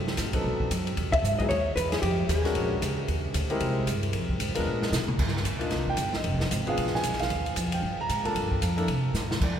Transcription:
0.00 0.17 F#2 medium
0.07 snare soft
0.17 0.43 A2 medium
0.17 kick soft
0.17 snare soft
0.17 hi-hat pedal medium
0.17 ride medium
0.33 0.68 F#3 medium
0.33 0.69 B3 soft
0.33 0.69 C4 soft
0.33 0.69 D#4 medium
0.33 0.69 A4 medium
0.33 kick soft
0.33 ride medium
0.44 0.69 B2 medium
0.44 kick soft
0.60 kick soft
0.71 0.96 F#2 medium
0.71 kick soft
0.71 hi-hat pedal medium
0.71 ride medium
0.87 ride soft
0.97 1.22 E2 medium
0.97 kick soft
0.97 ride medium
1.12 1.38 E5 loud
1.12 kick medium
1.12 ride medium
1.23 1.49 G#2 medium
1.23 hi-hat pedal medium
1.39 1.49 F#3 medium
1.39 1.49 B3 medium
1.39 1.50 D#4 medium
1.39 1.49 E4 medium
1.39 1.50 G#4 medium
1.39 1.43 D#5 medium
1.39 kick soft
1.39 ride soft
1.49 1.75 D#2 medium
1.49 1.74 C#5 medium
1.49 kick soft
1.49 ride medium
1.76 2.02 E2 medium
1.76 1.92 B4 medium
1.76 kick soft
1.76 hi-hat pedal soft
1.76 ride medium
1.92 2.01 G#4 medium
1.92 snare medium
1.92 ride soft
2.02 2.28 F2 medium
2.02 2.27 G4 medium
2.02 kick soft
2.02 ride medium
2.29 2.54 D#2 medium
2.29 2.74 G#4 medium
2.29 kick soft
2.29 hi-hat pedal medium
2.29 ride medium
2.45 2.80 G#3 medium
2.45 2.79 C#4 medium
2.45 2.80 D4 medium
2.45 2.80 F#4 medium
2.45 2.80 A#4 medium
2.45 snare soft
2.45 ride soft
2.55 2.80 A#1 medium
2.55 kick soft
2.55 ride medium
2.74 2.94 G4 medium
2.82 3.07 C#2 medium
2.82 kick soft
2.82 hi-hat pedal medium
2.82 ride medium
3.08 3.34 D#2 medium
3.08 kick soft
3.08 ride medium
3.34 3.60 D2 medium
3.34 kick soft
3.34 hi-hat pedal medium
3.34 ride medium
3.50 3.85 G#3 medium
3.50 3.85 C4 medium
3.50 3.85 E4 medium
3.50 3.85 G4 medium
3.50 3.85 A#4 medium
3.50 ride soft
3.60 3.86 C2 medium
3.60 kick soft
3.60 ride medium
3.87 4.13 G2 medium
3.87 kick soft
3.87 hi-hat pedal medium
3.87 ride medium
4.03 ride soft
4.13 4.39 F2 medium
4.13 kick soft
4.13 ride medium
4.29 kick soft
4.40 4.49 G#2 medium
4.40 kick soft
4.40 hi-hat pedal soft
4.40 ride medium
4.49 4.57 F2 medium
4.55 4.66 D#2 medium
4.55 4.90 G#3 medium
4.55 4.90 B3 medium
4.55 4.90 D4 medium
4.55 4.90 F4 medium
4.55 4.90 A#4 medium
4.55 ride medium
4.67 4.91 A#2 medium
4.82 snare medium
4.92 5.18 B2 medium
4.92 snare medium
4.92 hi-hat pedal medium
5.08 mid tom medium
5.19 5.44 G2 medium
5.19 kick medium
5.19 crash medium
5.28 snare soft
5.37 snare soft
5.45 5.70 D#2 medium
5.45 kick soft
5.45 hi-hat pedal soft
5.45 ride medium
5.59 5.95 A#3 medium
5.59 5.95 D4 medium
5.59 5.95 D#4 medium
5.59 5.95 F4 medium
5.59 5.86 D#5 medium
5.59 ride soft
5.71 5.97 C2 medium
5.71 kick soft
5.71 snare soft
5.71 ride medium
5.87 6.13 G5 medium
5.87 kick soft
5.97 6.23 G1 medium
5.97 kick soft
5.97 hi-hat pedal soft
5.97 ride medium
6.13 6.49 D#5 medium
6.13 snare soft
6.24 6.50 F1 medium
6.24 kick soft
6.24 ride medium
6.40 snare soft
6.51 6.77 G#1 medium
6.51 kick soft
6.51 hi-hat pedal medium
6.51 ride medium
6.67 7.01 B3 medium
6.67 7.02 D4 medium
6.67 7.02 F4 medium
6.67 7.02 G#4 medium
6.67 6.93 F5 medium
6.67 ride soft
6.77 7.03 A#1 medium
6.77 kick soft
6.77 ride medium
6.87 snare soft
6.95 7.19 G#5 medium
6.95 snare soft
7.03 7.29 B1 medium
7.03 kick soft
7.03 hi-hat pedal medium
7.03 ride medium
7.13 snare soft
7.19 7.54 F5 medium
7.19 snare soft
7.19 ride soft
7.30 7.56 D#2 medium
7.30 kick soft
7.30 ride medium
7.46 ride soft
7.56 7.82 F2 medium
7.56 kick soft
7.56 hi-hat pedal medium
7.56 ride medium
7.72 7.98 G5 medium
7.72 ride medium
7.82 7.97 G2 medium
7.82 kick soft
7.98 8.24 A#5 loud
7.98 muted upright bass stroke soft
8.09 8.34 G#2 medium
8.09 kick soft
8.09 hi-hat pedal medium
8.09 ride medium
8.24 8.59 A#3 medium
8.24 8.59 D4 medium
8.24 8.60 F4 medium
8.24 8.60 A4 medium
8.24 8.60 A5 medium
8.24 ride soft
8.35 8.61 G2 medium
8.35 kick soft
8.35 ride medium
8.51 kick medium
8.62 8.87 F2 medium
8.62 kick soft
8.62 hi-hat pedal medium
8.62 ride medium
8.77 8.87 A#3 medium
8.77 8.87 D4 medium
8.77 8.87 E4 medium
8.77 8.87 A4 medium
8.77 ride soft
8.88 9.13 C3 medium
8.88 kick soft
8.88 ride medium
9.14 9.40 A2 medium
9.14 snare soft
9.14 hi-hat pedal medium
9.31 snare medium
9.41 9.60 F2 medium
9.41 9.57 D5 medium
9.41 kick medium
9.41 crash medium

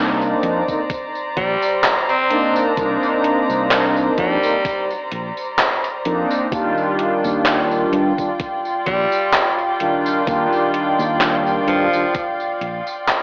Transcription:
0.00 0.33 C2 medium
0.00 0.62 A#3 medium
0.00 0.62 C4 medium
0.00 0.61 D4 loud
0.00 0.63 D#4 loud
0.00 6.48 C5 medium
0.00 6.48 D5 medium
0.00 6.48 A#5 medium
0.21 tambourine soft
0.43 0.61 F2 loud
0.43 closed hi-hat medium
0.68 0.79 D3 medium
0.68 0.79 A#3 medium
0.68 0.80 C4 medium
0.68 0.80 D#4 medium
0.68 kick medium
0.68 tambourine medium
0.90 kick loud
0.90 closed hi-hat medium
0.90 tambourine soft
1.15 tambourine soft
1.37 1.55 A#1 medium
1.37 1.94 G3 loud
1.37 kick loud
1.37 closed hi-hat medium
1.62 tambourine medium
1.84 clap loud
1.84 closed hi-hat medium
1.84 tambourine soft
2.09 2.65 C4 medium
2.09 closed hi-hat soft
2.09 tambourine soft
2.30 2.72 A#3 medium
2.30 2.72 C4 medium
2.30 2.72 D4 medium
2.30 2.73 D#4 medium
2.30 closed hi-hat medium
2.56 tambourine medium
2.76 2.96 C2 loud
2.76 4.37 A#3 medium
2.76 4.37 C4 medium
2.76 4.36 D4 medium
2.76 4.38 D#4 loud
2.76 kick loud
2.76 closed hi-hat medium
2.76 tambourine soft
3.03 tambourine soft
3.24 closed hi-hat medium
3.49 4.08 C2 medium
3.49 tambourine medium
3.71 clap loud
3.71 closed hi-hat medium
3.71 tambourine soft
3.96 tambourine soft
4.18 4.36 F2 loud
4.18 4.90 G3 loud
4.18 kick medium
4.18 closed hi-hat medium
4.42 4.54 D3 medium
4.42 4.54 A#3 medium
4.42 4.54 C4 medium
4.42 4.55 D#4 medium
4.42 tambourine medium
4.65 kick loud
4.65 closed hi-hat medium
4.65 tambourine soft
4.90 tambourine soft
5.11 5.30 A#1 medium
5.11 closed hi-hat medium
5.37 tambourine medium
5.59 clap loud
5.59 closed hi-hat medium
5.59 tambourine soft
5.84 closed hi-hat soft
5.84 tambourine soft
6.05 6.24 F2 medium
6.05 6.47 A#3 medium
6.05 6.47 C4 medium
6.05 6.47 D4 medium
6.05 6.47 D#4 medium
6.05 closed hi-hat medium
6.31 tambourine medium
6.50 6.71 D#2 loud
6.50 8.11 D#3 loud
6.50 8.12 G3 medium
6.50 8.12 D4 medium
6.50 13.23 F4 medium
6.50 8.13 F4 loud
6.50 13.23 D5 medium
6.50 13.23 G5 medium
6.50 kick loud
6.50 closed hi-hat medium
6.50 tambourine soft
6.78 tambourine soft
6.99 closed hi-hat medium
7.25 7.84 D#2 medium
7.25 tambourine medium
7.46 clap loud
7.46 closed hi-hat medium
7.46 tambourine soft
7.71 tambourine soft
7.93 8.11 G2 loud
7.93 closed hi-hat medium
8.17 8.29 D#3 medium
8.17 8.29 G3 medium
8.17 8.29 D4 medium
8.17 8.29 F4 medium
8.17 kick medium
8.17 tambourine soft
8.40 kick loud
8.40 closed hi-hat medium
8.40 tambourine soft
8.65 tambourine soft
8.86 9.05 A#1 medium
8.86 9.43 G3 loud
8.86 kick loud
8.86 closed hi-hat medium
9.12 tambourine medium
9.33 clap loud
9.33 closed hi-hat medium
9.33 tambourine soft
9.59 closed hi-hat soft
9.59 tambourine soft
9.80 10.22 D#3 medium
9.80 10.22 G3 medium
9.80 10.22 D4 medium
9.80 10.22 F4 medium
9.80 closed hi-hat medium
10.06 tambourine medium
10.25 10.46 D#2 loud
10.25 11.86 D#3 medium
10.25 11.87 G3 medium
10.25 11.87 D4 medium
10.25 11.88 F4 loud
10.25 13.23 F5 medium
10.25 kick loud
10.25 closed hi-hat medium
10.25 tambourine soft
10.53 tambourine soft
10.74 closed hi-hat medium
10.99 11.58 D#2 medium
10.99 tambourine medium
11.21 clap loud
11.21 closed hi-hat medium
11.21 tambourine soft
11.46 tambourine soft
11.67 11.86 G2 loud
11.67 12.25 F3 medium
11.67 closed hi-hat medium
11.93 12.04 D#3 medium
11.93 12.04 G3 medium
11.93 12.05 D4 medium
11.93 12.05 F4 medium
11.93 tambourine medium
12.15 kick loud
12.15 closed hi-hat medium
12.15 tambourine soft
12.40 tambourine soft
12.61 12.80 A#1 medium
12.61 closed hi-hat medium
12.87 tambourine medium
13.08 clap loud
13.08 closed hi-hat medium
13.08 tambourine soft

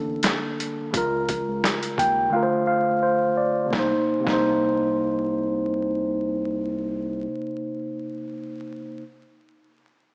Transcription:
0.00 0.20 A1 medium
0.00 0.89 D3 medium
0.00 0.90 A#3 medium
0.00 0.91 D4 medium
0.00 0.92 A4 medium
0.23 snare loud
0.23 closed hi-hat medium
0.60 closed hi-hat medium
0.91 1.42 C#2 loud
0.91 2.29 C#3 medium
0.91 2.30 G#3 medium
0.91 kick loud
0.91 closed hi-hat medium
0.95 2.31 F4 medium
0.95 2.32 A#4 medium
1.29 kick medium
1.29 closed hi-hat medium
1.48 1.62 C#2 medium
1.64 snare loud
1.64 closed hi-hat medium
1.83 closed hi-hat medium
1.98 2.29 D#2 medium
1.98 2.31 G5 medium
1.98 kick medium
1.98 closed hi-hat medium
2.30 3.68 D3 medium
2.30 3.69 A3 medium
2.30 2.65 F5 medium
2.34 3.70 F4 medium
2.34 2.42 A#4 medium
2.43 3.01 C5 medium
2.67 3.00 F5 medium
3.03 3.35 C5 medium
3.37 3.70 D5 medium
3.66 3.90 C3 medium
3.70 3.94 C2 loud
3.70 3.92 A#3 medium
3.70 kick loud
3.70 snare medium
3.75 3.95 D#4 medium
3.79 3.97 C5 medium
4.20 7.94 C3 medium
4.24 7.28 C2 loud
4.24 7.97 A#3 medium
4.24 kick loud
4.24 snare medium
4.29 7.99 D#4 medium
4.33 8.01 C5 medium

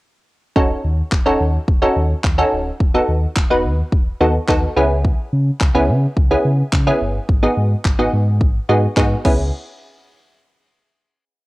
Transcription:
0.56 0.74 D#1 loud
0.56 0.96 C#4 medium
0.56 0.96 D#4 medium
0.56 0.96 F#4 medium
0.56 0.96 A4 loud
0.56 kick loud
0.84 1.02 D#2 loud
1.12 1.21 D#1 medium
1.12 kick loud
1.12 clap loud
1.26 1.35 D#1 medium
1.26 1.58 C#4 medium
1.26 1.58 D#4 medium
1.26 1.58 F#4 medium
1.26 1.58 A4 loud
1.40 1.58 D#2 loud
1.68 1.86 D#1 loud
1.68 kick loud
1.82 2.14 C#4 medium
1.82 2.14 D#4 medium
1.82 2.14 F#4 medium
1.82 2.14 A4 medium
1.96 2.14 D#2 loud
2.24 2.42 D#2 loud
2.24 kick loud
2.24 clap loud
2.38 2.70 C#4 medium
2.38 2.70 D#4 medium
2.38 2.71 F#4 medium
2.38 2.71 A4 loud
2.52 2.71 D1 medium
2.80 2.99 D#1 loud
2.80 kick loud
2.94 3.26 B3 medium
2.94 3.27 D#4 medium
2.94 3.27 F#4 medium
2.94 3.27 A4 medium
3.08 3.26 D#2 loud
3.36 3.46 D#1 loud
3.36 kick loud
3.36 clap loud
3.50 3.66 D#1 loud
3.50 3.91 B3 medium
3.50 3.91 D#4 medium
3.50 3.91 F#4 medium
3.50 3.91 B4 medium
3.64 3.83 D#2 loud
3.92 4.11 D#1 medium
3.92 kick loud
4.20 4.39 D#2 loud
4.20 4.37 B3 medium
4.20 4.37 D#4 medium
4.20 4.37 F#4 medium
4.20 4.37 A4 medium
4.48 4.67 D#2 medium
4.48 4.73 B3 medium
4.48 4.73 D#4 medium
4.48 4.73 F#4 medium
4.48 4.73 A4 loud
4.48 kick loud
4.48 clap loud
4.76 5.13 C#2 loud
4.76 5.55 B3 medium
4.76 5.55 C#4 medium
4.76 5.55 E4 medium
4.76 5.55 G#4 medium
5.05 kick loud
5.33 5.51 C#3 loud
5.61 5.70 C#2 loud
5.61 kick loud
5.61 clap loud
5.74 5.90 C#2 medium
5.74 6.07 B3 medium
5.74 6.07 C#4 medium
5.74 6.07 E4 medium
5.74 6.07 G#4 loud
5.89 6.07 C#3 medium
6.17 6.35 C#2 loud
6.17 kick loud
6.31 6.63 B3 medium
6.31 6.63 C#4 medium
6.31 6.63 E4 medium
6.31 6.63 G#4 loud
6.45 6.63 C#3 loud
6.73 6.91 C#3 loud
6.73 kick loud
6.73 clap loud
6.87 7.19 B3 medium
6.87 7.19 C#4 medium
6.87 7.19 E4 medium
6.87 7.19 G#4 loud
7.01 7.19 G1 medium
7.29 7.47 G#1 loud
7.29 kick loud
7.43 7.75 B3 medium
7.43 7.75 D#4 medium
7.43 7.75 F#4 medium
7.43 7.75 G#4 medium
7.57 7.75 G#2 loud
7.85 7.94 G#1 loud
7.85 kick loud
7.85 clap loud
7.99 8.08 G#1 medium
7.99 8.39 B3 medium
7.99 8.39 D#4 medium
7.99 8.39 F#4 medium
7.99 8.39 G#4 medium
8.13 8.43 G#2 loud
8.41 8.59 G#1 loud
8.41 kick loud
8.69 8.87 G#2 medium
8.69 8.85 B3 medium
8.69 8.85 D#4 medium
8.69 8.85 F#4 medium
8.69 8.85 G#4 medium
8.97 9.15 G#2 medium
8.97 9.21 B3 medium
8.97 9.21 D#4 medium
8.97 9.21 F#4 medium
8.97 9.21 G#4 loud
8.97 kick loud
8.97 clap loud
9.25 9.51 C#2 medium
9.25 9.51 B3 medium
9.25 9.51 C#4 medium
9.25 9.51 E4 medium
9.25 9.51 G#4 medium
9.25 kick loud
9.25 crash medium

